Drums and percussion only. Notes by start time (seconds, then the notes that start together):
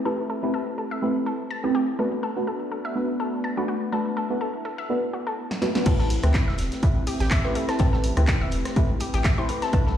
5.51 snare
5.62 snare
5.75 snare
5.86 kick, closed hi-hat, crash
5.99 snare
6.10 closed hi-hat, open hi-hat
6.23 cross-stick, closed hi-hat
6.34 kick, snare, clap, closed hi-hat
6.49 snare
6.58 snare, closed hi-hat, open hi-hat
6.72 snare, closed hi-hat
6.83 kick, closed hi-hat
7.07 open hi-hat
7.20 snare, closed hi-hat
7.30 kick, snare, clap, closed hi-hat
7.44 snare
7.55 closed hi-hat, open hi-hat
7.69 cross-stick, snare, closed hi-hat
7.79 kick, closed hi-hat
7.93 snare
8.04 closed hi-hat, open hi-hat
8.17 cross-stick, closed hi-hat
8.27 kick, snare, clap, closed hi-hat
8.51 closed hi-hat, open hi-hat
8.65 cross-stick, snare, closed hi-hat
8.76 kick, closed hi-hat
9.00 closed hi-hat, open hi-hat
9.14 snare, closed hi-hat
9.24 kick, snare, clap, closed hi-hat
9.49 closed hi-hat, open hi-hat
9.62 snare, closed hi-hat
9.73 kick, closed hi-hat
9.87 snare